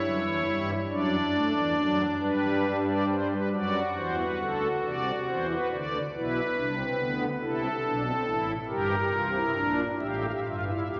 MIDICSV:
0, 0, Header, 1, 2, 480
1, 0, Start_track
1, 0, Tempo, 875912
1, 489, Time_signature, 6, 3, 24, 8
1, 2891, Tempo, 855920
1, 5291, Tempo, 875912
1, 6082, End_track
2, 0, Start_track
2, 0, Title_t, "Pipe organ"
2, 0, Program_c, 0, 19
2, 0, Note_on_c, 0, 64, 70
2, 0, Note_on_c, 0, 73, 72
2, 11, Note_on_c, 0, 54, 79
2, 12, Note_on_c, 0, 42, 85
2, 113, Note_off_c, 0, 42, 0
2, 113, Note_off_c, 0, 54, 0
2, 128, Note_on_c, 0, 52, 77
2, 130, Note_on_c, 0, 40, 80
2, 231, Note_off_c, 0, 52, 0
2, 233, Note_off_c, 0, 40, 0
2, 249, Note_on_c, 0, 43, 88
2, 250, Note_on_c, 0, 55, 91
2, 388, Note_off_c, 0, 73, 0
2, 389, Note_off_c, 0, 64, 0
2, 398, Note_off_c, 0, 43, 0
2, 398, Note_off_c, 0, 55, 0
2, 488, Note_on_c, 0, 62, 79
2, 489, Note_on_c, 0, 42, 95
2, 490, Note_on_c, 0, 54, 93
2, 491, Note_on_c, 0, 74, 87
2, 638, Note_off_c, 0, 42, 0
2, 639, Note_off_c, 0, 54, 0
2, 730, Note_on_c, 0, 57, 103
2, 832, Note_off_c, 0, 57, 0
2, 849, Note_on_c, 0, 52, 72
2, 850, Note_on_c, 0, 40, 78
2, 951, Note_off_c, 0, 52, 0
2, 952, Note_off_c, 0, 40, 0
2, 966, Note_on_c, 0, 42, 92
2, 968, Note_on_c, 0, 54, 93
2, 1107, Note_off_c, 0, 74, 0
2, 1115, Note_off_c, 0, 42, 0
2, 1116, Note_off_c, 0, 54, 0
2, 1206, Note_on_c, 0, 43, 79
2, 1207, Note_on_c, 0, 55, 73
2, 1207, Note_on_c, 0, 71, 58
2, 1517, Note_off_c, 0, 71, 0
2, 1571, Note_on_c, 0, 74, 66
2, 1672, Note_off_c, 0, 74, 0
2, 1689, Note_on_c, 0, 72, 67
2, 1727, Note_off_c, 0, 62, 0
2, 1792, Note_off_c, 0, 72, 0
2, 1807, Note_on_c, 0, 71, 65
2, 1827, Note_off_c, 0, 43, 0
2, 1828, Note_off_c, 0, 55, 0
2, 1911, Note_off_c, 0, 71, 0
2, 1928, Note_on_c, 0, 66, 64
2, 1929, Note_on_c, 0, 42, 74
2, 1929, Note_on_c, 0, 54, 70
2, 1929, Note_on_c, 0, 74, 77
2, 2080, Note_off_c, 0, 42, 0
2, 2080, Note_off_c, 0, 54, 0
2, 2080, Note_off_c, 0, 74, 0
2, 2172, Note_on_c, 0, 40, 73
2, 2172, Note_on_c, 0, 52, 73
2, 2173, Note_on_c, 0, 72, 81
2, 2277, Note_off_c, 0, 72, 0
2, 2295, Note_on_c, 0, 71, 66
2, 2322, Note_off_c, 0, 40, 0
2, 2322, Note_off_c, 0, 52, 0
2, 2398, Note_off_c, 0, 71, 0
2, 2410, Note_on_c, 0, 50, 63
2, 2412, Note_on_c, 0, 38, 69
2, 2414, Note_on_c, 0, 69, 70
2, 2560, Note_off_c, 0, 50, 0
2, 2561, Note_off_c, 0, 38, 0
2, 2562, Note_off_c, 0, 69, 0
2, 2654, Note_on_c, 0, 36, 55
2, 2655, Note_on_c, 0, 48, 64
2, 2655, Note_on_c, 0, 74, 69
2, 2801, Note_off_c, 0, 36, 0
2, 2802, Note_off_c, 0, 48, 0
2, 2802, Note_off_c, 0, 74, 0
2, 2892, Note_on_c, 0, 72, 65
2, 2893, Note_on_c, 0, 40, 61
2, 2893, Note_on_c, 0, 52, 57
2, 2996, Note_off_c, 0, 72, 0
2, 3014, Note_on_c, 0, 71, 60
2, 3042, Note_off_c, 0, 52, 0
2, 3043, Note_off_c, 0, 40, 0
2, 3117, Note_off_c, 0, 71, 0
2, 3137, Note_on_c, 0, 38, 57
2, 3138, Note_on_c, 0, 50, 60
2, 3138, Note_on_c, 0, 74, 69
2, 3168, Note_off_c, 0, 66, 0
2, 3285, Note_off_c, 0, 38, 0
2, 3285, Note_off_c, 0, 50, 0
2, 3286, Note_off_c, 0, 74, 0
2, 3374, Note_on_c, 0, 64, 75
2, 3375, Note_on_c, 0, 35, 72
2, 3375, Note_on_c, 0, 47, 65
2, 3375, Note_on_c, 0, 71, 70
2, 3522, Note_off_c, 0, 64, 0
2, 3523, Note_off_c, 0, 35, 0
2, 3523, Note_off_c, 0, 47, 0
2, 3616, Note_on_c, 0, 36, 81
2, 3616, Note_on_c, 0, 62, 80
2, 3617, Note_on_c, 0, 48, 72
2, 3717, Note_off_c, 0, 62, 0
2, 3733, Note_on_c, 0, 60, 67
2, 3763, Note_off_c, 0, 36, 0
2, 3764, Note_off_c, 0, 48, 0
2, 3835, Note_off_c, 0, 60, 0
2, 3852, Note_on_c, 0, 38, 74
2, 3852, Note_on_c, 0, 59, 74
2, 3854, Note_on_c, 0, 50, 69
2, 3991, Note_off_c, 0, 71, 0
2, 4000, Note_off_c, 0, 38, 0
2, 4000, Note_off_c, 0, 59, 0
2, 4001, Note_off_c, 0, 50, 0
2, 4087, Note_on_c, 0, 64, 75
2, 4088, Note_on_c, 0, 36, 62
2, 4088, Note_on_c, 0, 48, 66
2, 4089, Note_on_c, 0, 69, 63
2, 4236, Note_off_c, 0, 36, 0
2, 4236, Note_off_c, 0, 64, 0
2, 4237, Note_off_c, 0, 48, 0
2, 4328, Note_on_c, 0, 47, 64
2, 4329, Note_on_c, 0, 35, 66
2, 4330, Note_on_c, 0, 62, 71
2, 4432, Note_off_c, 0, 62, 0
2, 4448, Note_on_c, 0, 60, 72
2, 4477, Note_off_c, 0, 35, 0
2, 4477, Note_off_c, 0, 47, 0
2, 4551, Note_off_c, 0, 60, 0
2, 4565, Note_on_c, 0, 33, 62
2, 4566, Note_on_c, 0, 45, 70
2, 4566, Note_on_c, 0, 64, 78
2, 4707, Note_off_c, 0, 69, 0
2, 4715, Note_off_c, 0, 33, 0
2, 4716, Note_off_c, 0, 45, 0
2, 4716, Note_off_c, 0, 64, 0
2, 4800, Note_on_c, 0, 70, 80
2, 4801, Note_on_c, 0, 43, 80
2, 4801, Note_on_c, 0, 67, 97
2, 4802, Note_on_c, 0, 31, 79
2, 4952, Note_off_c, 0, 43, 0
2, 4953, Note_off_c, 0, 31, 0
2, 4953, Note_off_c, 0, 67, 0
2, 5046, Note_on_c, 0, 48, 85
2, 5046, Note_on_c, 0, 65, 97
2, 5047, Note_on_c, 0, 36, 86
2, 5151, Note_off_c, 0, 65, 0
2, 5167, Note_on_c, 0, 64, 69
2, 5197, Note_off_c, 0, 36, 0
2, 5197, Note_off_c, 0, 48, 0
2, 5272, Note_off_c, 0, 64, 0
2, 5287, Note_on_c, 0, 62, 93
2, 5288, Note_on_c, 0, 34, 78
2, 5289, Note_on_c, 0, 46, 84
2, 5425, Note_off_c, 0, 70, 0
2, 5436, Note_off_c, 0, 34, 0
2, 5436, Note_off_c, 0, 62, 0
2, 5437, Note_off_c, 0, 46, 0
2, 5525, Note_on_c, 0, 45, 68
2, 5527, Note_on_c, 0, 33, 78
2, 5527, Note_on_c, 0, 67, 88
2, 5527, Note_on_c, 0, 76, 63
2, 5572, Note_off_c, 0, 76, 0
2, 5574, Note_on_c, 0, 77, 58
2, 5617, Note_on_c, 0, 76, 54
2, 5618, Note_off_c, 0, 77, 0
2, 5662, Note_off_c, 0, 76, 0
2, 5665, Note_on_c, 0, 77, 52
2, 5676, Note_off_c, 0, 45, 0
2, 5677, Note_off_c, 0, 33, 0
2, 5677, Note_off_c, 0, 67, 0
2, 5707, Note_on_c, 0, 76, 60
2, 5708, Note_off_c, 0, 77, 0
2, 5746, Note_on_c, 0, 77, 56
2, 5752, Note_off_c, 0, 76, 0
2, 5767, Note_on_c, 0, 31, 62
2, 5767, Note_on_c, 0, 43, 68
2, 5769, Note_on_c, 0, 65, 83
2, 5793, Note_off_c, 0, 77, 0
2, 5795, Note_on_c, 0, 76, 60
2, 5841, Note_off_c, 0, 76, 0
2, 5841, Note_on_c, 0, 77, 53
2, 5873, Note_off_c, 0, 65, 0
2, 5882, Note_on_c, 0, 76, 60
2, 5886, Note_off_c, 0, 77, 0
2, 5887, Note_on_c, 0, 64, 73
2, 5917, Note_off_c, 0, 31, 0
2, 5917, Note_off_c, 0, 43, 0
2, 5924, Note_on_c, 0, 77, 56
2, 5929, Note_off_c, 0, 76, 0
2, 5971, Note_on_c, 0, 76, 52
2, 5972, Note_off_c, 0, 77, 0
2, 5992, Note_off_c, 0, 64, 0
2, 6005, Note_on_c, 0, 28, 75
2, 6005, Note_on_c, 0, 67, 83
2, 6007, Note_on_c, 0, 40, 74
2, 6017, Note_off_c, 0, 76, 0
2, 6019, Note_on_c, 0, 77, 59
2, 6064, Note_off_c, 0, 77, 0
2, 6065, Note_on_c, 0, 76, 67
2, 6082, Note_off_c, 0, 28, 0
2, 6082, Note_off_c, 0, 40, 0
2, 6082, Note_off_c, 0, 67, 0
2, 6082, Note_off_c, 0, 76, 0
2, 6082, End_track
0, 0, End_of_file